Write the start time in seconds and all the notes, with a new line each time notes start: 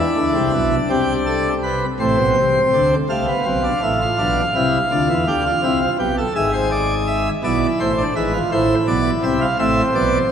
Already playing: D4 E4
0.17 D2 D3
0.35 C2 C3
0.54 B1 B2
0.90 C2 C3 G4
1.26 A4
1.63 B4
2.00 A1 A2 C4 C5
2.18 B1 B2
2.36 C2 C3
2.73 D2 D3
3.09 C2 C3 A3 F5
3.28 B3
3.46 B1 B2 C4
3.64 D4
3.83 A1 A2 E4
4.01 F4
4.19 B1 B2 D4
4.55 C2 C3 E4
4.91 D2 D3 F4
5.09 E2 E3
5.27 D2 D3 G4
5.45 F4
5.63 C2 C3 E4
5.82 F4
5.99 B1 B2 G4
6.18 A4
6.35 G#1 G#2 G#4 E5
6.53 C5
6.71 D5
7.07 E5
7.44 B1 B2 E4 D5
7.80 A1 A2 C5
7.98 D4
8.16 G#1 G#2 E4 B4
8.34 F4
8.52 A1 A2 E4 C5
8.87 B1 B2 D5
9.23 C2 C3 E5
9.41 F5
9.59 A1 A2 C4 E5
9.95 B1 B2 D5